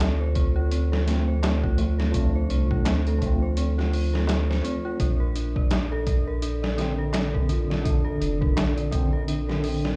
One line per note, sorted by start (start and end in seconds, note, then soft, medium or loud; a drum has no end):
0.00 2.47 D2 medium
0.00 0.35 C4 medium
0.00 0.56 F4 medium
0.00 0.92 A4 medium
0.00 snare loud
0.00 closed hi-hat medium
0.00 darbuka tek medium
0.20 0.35 C5 medium
0.35 0.54 C4 medium
0.35 kick medium
0.35 closed hi-hat medium
0.56 0.65 F4 medium
0.71 0.83 C4 medium
0.71 closed hi-hat medium
0.92 1.06 A4 medium
0.92 snare soft
1.05 1.74 F3 medium
1.05 1.75 A3 medium
1.05 1.26 C4 medium
1.05 snare soft
1.05 closed hi-hat medium
1.09 1.76 C4 medium
1.28 1.42 C5 medium
1.43 1.62 C4 medium
1.43 snare loud
1.43 closed hi-hat medium
1.43 darbuka tek medium
1.63 1.72 F4 medium
1.63 kick medium
1.77 2.10 F3 medium
1.77 2.11 A3 medium
1.77 1.90 C4 medium
1.77 closed hi-hat medium
1.81 2.12 F4 medium
1.99 2.13 A4 medium
1.99 snare soft
2.11 3.17 F3 medium
2.11 3.18 A3 medium
2.11 2.33 C4 medium
2.11 kick medium
2.11 closed hi-hat medium
2.19 3.21 D4 medium
2.35 2.50 C5 medium
2.50 2.82 C2 medium
2.50 2.69 C4 medium
2.50 closed hi-hat medium
2.71 2.79 F4 medium
2.71 kick medium
2.85 4.62 D2 medium
2.85 2.98 C4 medium
2.85 snare loud
2.85 closed hi-hat medium
2.85 darbuka tek medium
3.07 3.20 A4 medium
3.07 closed hi-hat soft
3.18 4.97 F3 medium
3.18 4.99 A3 medium
3.18 3.40 C4 medium
3.18 kick medium
3.18 closed hi-hat medium
3.26 5.01 C4 medium
3.42 3.57 C5 medium
3.57 3.76 C4 medium
3.57 closed hi-hat medium
3.78 3.87 F4 medium
3.78 snare soft
3.93 4.05 C4 medium
3.93 open hi-hat medium
4.13 4.27 A4 medium
4.13 snare soft
4.27 4.47 C4 medium
4.27 snare loud
4.27 closed hi-hat medium
4.27 darbuka tek medium
4.50 4.64 C5 medium
4.50 snare soft
4.64 4.83 C4 loud
4.64 closed hi-hat medium
4.85 4.94 F4 medium
5.00 8.19 A#1 medium
5.00 5.12 D4 medium
5.00 kick loud
5.00 closed hi-hat medium
5.20 5.34 A#4 medium
5.35 5.54 D4 medium
5.35 closed hi-hat medium
5.56 5.71 D5 medium
5.56 kick medium
5.71 5.90 D4 medium
5.71 snare loud
5.71 closed hi-hat medium
5.71 darbuka tek medium
5.92 6.01 A4 medium
6.07 6.19 D4 medium
6.07 kick medium
6.07 closed hi-hat medium
6.27 6.41 A#4 medium
6.42 6.61 D4 medium
6.42 closed hi-hat medium
6.63 6.78 D5 medium
6.63 snare medium
6.77 7.46 D3 medium
6.77 6.97 D4 medium
6.77 snare soft
6.77 closed hi-hat medium
6.81 7.48 C4 loud
6.98 7.08 A4 medium
7.13 7.26 D4 medium
7.13 snare loud
7.13 closed hi-hat medium
7.13 darbuka tek medium
7.34 7.48 A#4 medium
7.34 kick medium
7.48 7.80 D3 medium
7.48 7.68 D4 medium
7.48 7.83 F4 medium
7.48 closed hi-hat medium
7.70 7.85 D5 medium
7.70 snare soft
7.81 8.87 D3 medium
7.81 8.04 D4 loud
7.85 kick loud
7.85 closed hi-hat medium
7.90 8.91 D4 medium
8.04 8.14 A4 medium
8.20 8.53 F1 medium
8.20 8.33 D4 medium
8.20 closed hi-hat medium
8.41 8.55 A#4 medium
8.41 kick loud
8.57 9.96 A#1 medium
8.57 8.76 D4 medium
8.57 snare loud
8.57 closed hi-hat medium
8.57 darbuka tek medium
8.77 8.92 D5 medium
8.77 closed hi-hat soft
8.91 9.59 D3 medium
8.91 9.62 C4 medium
8.91 9.11 D4 medium
8.91 kick medium
8.91 closed hi-hat medium
9.13 9.22 A4 medium
9.28 9.40 D4 medium
9.28 closed hi-hat medium
9.49 9.63 A#4 medium
9.49 snare soft
9.60 9.96 D3 medium
9.60 open hi-hat medium
9.64 9.83 D4 medium
9.68 9.96 C4 medium
9.85 9.96 D5 medium
9.85 snare soft